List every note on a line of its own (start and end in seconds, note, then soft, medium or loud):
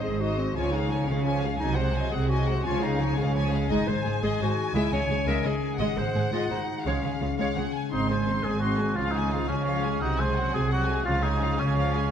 0.00 0.50 G#1 soft
0.00 0.57 G#2 soft
0.00 0.50 G#2 soft
0.00 0.57 D#3 soft
0.00 0.90 G#3 soft
0.00 0.21 C4 soft
0.00 0.37 D#4 soft
0.00 0.22 G#4 medium
0.00 0.21 C5 soft
0.00 0.21 D#5 soft
0.20 0.37 D#4 soft
0.20 0.55 F#4 medium
0.20 1.25 G#4 soft
0.20 0.38 C5 soft
0.20 0.38 D#5 soft
0.38 0.56 C4 soft
0.38 0.57 D#4 soft
0.38 0.57 C5 soft
0.38 0.56 D#5 soft
0.55 1.02 C#2 soft
0.55 1.62 C#3 soft
0.55 1.02 C#3 soft
0.55 0.72 F3 soft
0.55 0.73 F4 medium
0.55 0.74 C#5 soft
0.55 0.73 G#5 soft
0.72 0.91 G#3 soft
0.72 1.62 C#4 soft
0.72 1.08 D#4 medium
0.72 0.92 F5 soft
0.76 0.92 G#4 soft
0.90 1.08 F3 soft
0.90 1.94 G#3 soft
0.90 1.08 G#5 soft
0.95 1.11 C#5 soft
1.07 1.54 C#2 soft
1.07 1.54 C#3 soft
1.07 1.26 G#3 soft
1.07 1.59 C#4 medium
1.07 1.42 F4 soft
1.07 1.25 F5 soft
1.11 1.27 G#4 soft
1.25 1.42 F3 soft
1.25 2.29 G#4 soft
1.25 1.43 C#5 soft
1.25 1.42 G#5 soft
1.43 1.61 G#3 soft
1.43 1.62 F4 soft
1.43 1.62 G#4 soft
1.43 1.61 F5 soft
1.57 2.07 C2 soft
1.57 2.07 C3 soft
1.57 2.67 C3 soft
1.57 1.77 F#3 soft
1.57 1.77 D#4 medium
1.57 1.75 G#5 soft
1.63 1.78 D#5 soft
1.75 2.67 F#3 soft
1.75 1.95 G#3 soft
1.75 2.10 C5 medium
1.75 1.95 F#5 soft
1.80 1.97 C5 soft
1.94 2.13 F#3 soft
1.94 2.99 G#3 soft
1.94 2.12 G#5 soft
1.98 2.14 D#5 soft
2.11 2.59 C2 soft
2.11 2.59 C3 medium
2.11 2.30 G#3 soft
2.11 2.46 F#4 soft
2.11 2.30 G#4 medium
2.11 2.31 C5 soft
2.11 2.30 F#5 soft
2.29 2.47 F#3 soft
2.29 2.65 F#4 medium
2.29 3.34 G#4 soft
2.29 2.47 D#5 soft
2.29 2.47 G#5 soft
2.47 2.65 G#3 soft
2.47 2.66 F#4 soft
2.47 2.66 C5 soft
2.47 2.65 F#5 soft
2.65 3.12 C#2 soft
2.65 3.71 C#3 soft
2.65 3.11 C#3 medium
2.65 2.81 F3 soft
2.65 2.84 F4 medium
2.65 2.82 C#5 soft
2.65 2.81 G#5 soft
2.82 3.00 G#3 soft
2.82 3.71 C#4 soft
2.82 3.17 D#4 medium
2.82 3.00 G#4 soft
2.82 3.00 F5 soft
3.00 3.18 F3 soft
3.00 4.03 G#3 soft
3.00 3.18 C#5 soft
3.00 3.18 G#5 soft
3.17 3.64 C#2 medium
3.17 3.64 C#3 medium
3.17 3.35 G#3 soft
3.17 3.73 C#4 medium
3.17 3.51 F4 soft
3.17 3.35 G#4 soft
3.17 3.36 F5 soft
3.35 3.52 F3 soft
3.35 4.39 G#4 soft
3.35 3.52 C#5 soft
3.35 3.52 G#5 soft
3.52 3.70 G#3 soft
3.52 3.71 F4 soft
3.52 3.70 G#4 soft
3.52 3.70 F5 soft
3.68 3.77 G#1 medium
3.68 4.76 G#2 medium
3.68 3.77 G#2 medium
3.68 3.87 G#3 medium
3.68 3.90 D#4 medium
3.68 3.85 D#5 medium
3.68 5.76 G#5 medium
3.87 3.94 G#1 soft
3.87 3.95 G#2 soft
3.87 4.76 D#3 soft
3.87 3.95 G#3 soft
3.87 3.94 C5 soft
3.87 4.21 C5 medium
4.05 4.12 G#1 soft
4.05 4.12 G#2 soft
4.05 5.08 G#3 soft
4.05 4.12 G#3 soft
4.05 4.12 G#4 soft
4.22 4.30 G#1 medium
4.22 4.30 G#2 medium
4.22 4.39 G#3 medium
4.22 4.55 D#4 soft
4.22 4.39 G#4 medium
4.22 4.39 D#5 medium
4.40 4.48 G#1 soft
4.40 4.47 G#2 soft
4.40 4.48 G#3 soft
4.40 4.73 F#4 medium
4.40 5.43 G#4 soft
4.40 4.49 C5 soft
4.57 5.26 D#4 soft
4.74 4.81 C#2 medium
4.74 4.81 C#3 medium
4.74 5.81 C#3 medium
4.74 4.91 G#3 medium
4.74 4.91 E4 medium
4.74 4.92 E5 medium
4.92 4.99 C#2 soft
4.92 4.99 C#3 soft
4.92 4.99 G#3 soft
4.92 5.81 C#4 soft
4.92 5.26 C#5 medium
4.92 4.99 D#5 soft
5.09 5.16 C#2 soft
5.09 5.16 C#3 soft
5.09 6.14 G#3 soft
5.09 5.17 G#3 soft
5.09 5.18 C#5 soft
5.27 5.34 C#2 medium
5.27 5.34 C#3 medium
5.27 5.44 G#3 medium
5.27 5.61 D#4 soft
5.27 5.47 A#4 medium
5.27 5.43 E5 medium
5.43 5.51 C#2 soft
5.43 5.51 C#3 soft
5.43 5.52 G#3 soft
5.43 7.55 G#4 soft
5.43 5.79 G#4 medium
5.43 5.51 D#5 soft
5.62 6.31 D#4 soft
5.78 5.86 G#1 medium
5.78 5.86 G#2 medium
5.78 6.87 G#2 soft
5.78 5.96 G#3 medium
5.78 5.98 G#4 medium
5.78 5.96 D#5 medium
5.78 6.83 F#5 soft
5.97 6.04 G#1 soft
5.97 6.04 G#2 soft
5.97 6.87 D#3 soft
5.97 6.04 G#3 soft
5.97 6.32 C5 medium
5.97 6.04 C5 soft
6.13 6.21 G#1 soft
6.13 6.21 G#2 soft
6.13 6.21 G#3 soft
6.13 7.02 G#3 soft
6.13 6.22 G#4 soft
6.31 6.39 G#1 medium
6.31 6.39 G#2 medium
6.31 6.48 G#3 medium
6.31 6.66 D#4 soft
6.31 6.53 F4 medium
6.31 6.49 D#5 soft
6.49 6.57 G#1 soft
6.49 6.57 G#2 soft
6.49 6.57 G#3 soft
6.49 6.85 D#4 medium
6.49 6.87 F#4 soft
6.49 6.58 C5 soft
6.67 6.87 D#4 soft
6.84 6.93 C#2 soft
6.84 6.93 C#3 soft
6.84 7.93 C#3 soft
6.84 7.02 G#3 soft
6.84 7.38 C#4 soft
6.84 7.03 C#5 soft
6.84 7.34 F5 soft
7.03 7.10 C#2 soft
7.03 7.10 C#3 soft
7.03 8.26 G#3 soft
7.03 7.11 G#3 soft
7.03 7.11 G#4 soft
7.20 7.28 C#2 soft
7.20 7.28 C#3 soft
7.20 7.28 G#3 soft
7.20 7.93 C#4 soft
7.20 7.28 F4 soft
7.38 7.46 C#2 soft
7.38 7.45 C#3 soft
7.38 7.55 G#3 soft
7.38 7.72 F4 soft
7.38 7.55 C#5 soft
7.38 7.55 F5 soft
7.55 7.63 C#2 soft
7.55 7.63 C#3 soft
7.55 7.64 G#3 soft
7.55 8.61 G#4 soft
7.55 7.64 G#4 soft
7.55 7.75 F#5 soft
7.74 7.93 F4 soft
7.74 7.92 G#5 soft
7.91 8.39 G#1 soft
7.91 8.38 G#2 soft
7.91 8.99 G#2 soft
7.91 8.09 C4 soft
7.91 8.08 D#4 medium
7.91 8.09 D#4 soft
7.91 8.09 C6 soft
8.09 8.99 D#3 soft
8.09 8.28 G#3 soft
8.09 8.28 C4 soft
8.09 8.46 C5 medium
8.09 8.28 G#5 soft
8.27 9.31 G#3 soft
8.27 8.45 C4 soft
8.27 8.45 D#4 soft
8.27 8.45 C6 soft
8.44 8.91 G#1 soft
8.44 8.91 G#2 soft
8.44 8.63 G#3 soft
8.44 8.63 C4 soft
8.44 8.78 D#4 soft
8.44 8.59 G#4 medium
8.44 8.63 G#5 soft
8.60 8.79 C4 soft
8.60 8.79 D#4 soft
8.60 8.97 F#4 medium
8.60 9.67 G#4 soft
8.60 8.79 C6 soft
8.79 8.97 G#3 soft
8.79 8.98 C4 soft
8.79 8.99 D#4 soft
8.79 8.97 G#5 soft
8.95 9.44 C#2 soft
8.95 9.43 C#3 soft
8.95 10.04 C#3 soft
8.95 9.14 F3 soft
8.95 9.13 F4 medium
8.95 9.15 F4 soft
8.95 9.14 F5 soft
9.12 10.04 C#4 soft
9.12 9.47 D#4 medium
9.16 9.33 G#3 soft
9.16 9.33 G#4 soft
9.16 9.33 G#5 soft
9.32 9.50 F3 soft
9.32 10.37 G#3 soft
9.32 9.50 F4 soft
9.32 9.50 F5 soft
9.48 9.96 C#2 soft
9.48 9.96 C#3 soft
9.48 9.68 G#3 soft
9.48 10.00 C#4 medium
9.48 9.84 F4 soft
9.48 9.68 G#4 soft
9.48 9.67 G#5 soft
9.65 9.84 F3 soft
9.65 9.84 F4 soft
9.65 10.71 G#4 soft
9.65 9.83 F5 soft
9.83 10.02 G#3 soft
9.83 10.04 G#4 soft
9.83 10.02 G#5 soft
10.01 10.48 C2 soft
10.01 10.48 C3 soft
10.01 11.09 C3 soft
10.01 10.19 F#3 soft
10.01 10.22 D#4 medium
10.01 10.19 F#4 soft
10.01 10.18 F#5 soft
10.17 11.09 F#3 soft
10.17 10.37 G#3 soft
10.17 10.53 C5 medium
10.17 10.36 G#5 soft
10.22 10.38 G#4 soft
10.36 10.55 F#3 soft
10.36 11.41 G#3 soft
10.36 10.56 F#4 soft
10.36 10.54 F#5 soft
10.53 11.01 C2 soft
10.53 11.01 C3 medium
10.53 10.72 G#3 soft
10.53 10.89 F#4 soft
10.53 10.71 G#4 medium
10.53 10.72 G#4 soft
10.53 10.71 G#5 soft
10.70 10.88 F#3 soft
10.70 11.05 F#4 medium
10.70 10.89 F#4 soft
10.70 11.76 G#4 soft
10.70 10.87 F#5 soft
10.86 11.07 G#3 soft
10.86 11.09 F#4 soft
10.86 11.05 G#5 soft
10.92 11.08 G#4 soft
11.05 11.53 C#2 medium
11.05 11.53 C#3 medium
11.05 12.11 C#3 soft
11.05 11.23 F3 soft
11.05 11.25 F4 medium
11.05 11.24 F4 soft
11.05 11.22 F5 soft
11.23 11.41 G#3 soft
11.23 12.11 C#4 soft
11.23 11.61 D#4 medium
11.23 11.43 G#4 soft
11.23 11.42 G#5 soft
11.41 11.59 F3 soft
11.41 12.11 G#3 soft
11.41 11.60 F4 soft
11.41 11.59 F5 soft
11.58 12.06 C#2 medium
11.58 12.05 C#3 medium
11.58 11.77 G#3 soft
11.58 12.11 C#4 medium
11.58 11.93 F4 soft
11.58 11.78 G#4 soft
11.58 11.76 G#5 soft
11.76 11.93 F3 soft
11.76 11.93 F4 soft
11.76 12.11 G#4 soft
11.76 11.93 F5 soft
11.94 12.11 G#3 soft
11.94 12.11 F4 soft
11.94 12.11 G#4 soft
11.94 12.09 G#5 soft